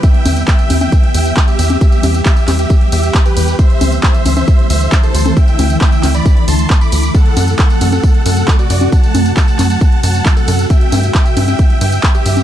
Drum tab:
RD |--x---x---x---x-|--x---x---x---x-|--x---x---x---x-|--x---x---x---x-|
HH |xxoxxxoxxxoxxxox|xxoxxxoxxxoxxxox|xxoxxxoxxxoxxxox|xxoxxxoxxxoxxxox|
TB |x-xxxxxxx-xxxxxx|xxxxxxxxx-xxxxxx|x-xxxxxxx-xxxxxx|xxxxxxxxx-xxxxxx|
CP |----x-------x---|----x-x-----x---|----x-------x---|----x-x-----x---|
CG |--o---oo-------o|--o---o---------|--o---oo-------o|--o---o---------|
BD |o---o---o---o---|o---o---o---o---|o---o---o---o---|o---o---o---o---|

RD |--x---x---x---x-|--x---x---x---x-|--x---x---x---x-|
HH |xxoxxxoxxxoxxxox|xxoxxxoxxxoxxxox|xxoxxxoxxxoxxxox|
TB |x-xxxxxxx-xxxxxx|xxxxxxxxx-xxxxxx|x-xxxxxxx-xxxxxx|
CP |----x-------x---|----x-x-----x---|----x-------x---|
CG |--o---oo-------o|--o---o---------|--o---oo-------o|
BD |o---o---o---o---|o---o---o---o---|o---o---o---o---|